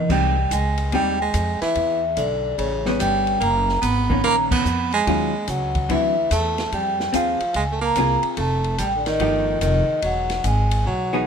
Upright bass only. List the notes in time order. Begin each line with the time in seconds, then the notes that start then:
0.09 C2
0.51 C#2
0.92 D#2
1.34 F2
1.61 muted upright bass stroke
1.76 E2
2.17 B1
2.58 A1
3.00 G1
3.41 F#1
3.82 G#1
4.24 A#1
4.65 F2
5.07 D#2
5.48 C#2
5.90 D2
6.31 E2
6.72 F2
7.14 D#2
7.41 muted upright bass stroke
7.55 C#2
7.96 C2
8.23 muted upright bass stroke
8.37 F1
8.78 A1
9.20 G1
9.61 F1
10.03 E1
10.44 G#1
10.86 B1